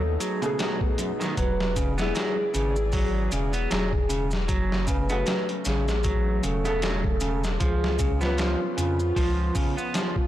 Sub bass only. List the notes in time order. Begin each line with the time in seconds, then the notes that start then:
Already playing: D#2
1.38 E1
2.55 G#1
3.32 E1
3.71 E1
4.49 F#1
5.66 A1
6.44 E1
7.61 C#2
8.78 F2
9.17 C#2